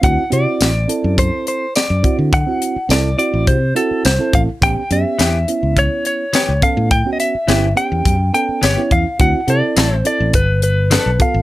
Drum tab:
HH |xxxxxxxx|xxxxxxxx|xxxxxxxx|xxxxxxxx|
TB |--x---x-|--x---x-|--x---x-|--x---x-|
SD |--o---o-|--o---o-|--o---o-|--o---o-|
BD |o---o--o|o---o--o|o---o--o|o---o--o|

HH |xxxxxxxx|
TB |--x---x-|
SD |--o---o-|
BD |o---o--o|